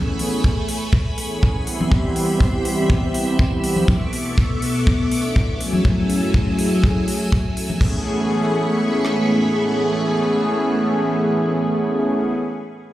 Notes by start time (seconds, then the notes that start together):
Already playing: E3 A3 B3 C#4 G#4 G#5 B5 C#6
0.19 open hi-hat
0.32 E3 A3 B3 C#4 G#4
0.44 kick
0.69 open hi-hat
0.93 kick
1.17 E3 A3 B3 C#4 G#4, open hi-hat
1.43 kick
1.54 E3 G3 B3 C4 G4
1.67 E5 C6, open hi-hat
1.81 high conga
1.91 kick, high conga
2.16 open hi-hat
2.28 E3 G3 B3 C4 G4
2.40 kick
2.65 open hi-hat
2.90 kick
3.14 E3 G3 B3 C4 G4, open hi-hat
3.39 kick
3.52 E3 G3 B3 C4 G4
3.64 open hi-hat
3.76 high conga
3.88 B3 A4 C#6 D6, kick, high conga
4.13 open hi-hat
4.26 E3 B3 C#4 D4 A4
4.38 kick
4.62 open hi-hat
4.87 kick
5.11 E3 B3 C#4 D4 A4, open hi-hat
5.36 kick
5.48 F#3 A3 C#4 E4 G#4
5.60 F#3 A3 G#5 E6, open hi-hat
5.73 high conga
5.85 kick, high conga
6.10 open hi-hat
6.22 F#3 A3 C#4 E4 G#4
6.34 kick
6.59 open hi-hat
6.84 kick
7.08 open hi-hat
7.21 open hi-hat
7.32 kick
7.45 F#3 A3 C#4 E4 A4
7.56 E3 A3 B3 C#4 G#4, open hi-hat
7.70 high conga
7.80 E3 A3 B3 C#4 G#4 B5 C#6, kick, crash
9.05 cross-stick